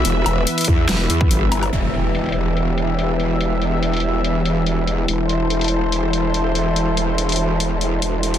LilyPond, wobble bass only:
\new Staff \with { instrumentName = "Wobble bass" } { \clef bass \time 4/4 \key e \minor \tempo 4 = 143 e,,8 e,,8 r8 e,8 e,,8 e,8 g,,4 | e,,1~ | e,,1 | e,,1~ |
e,,1 | }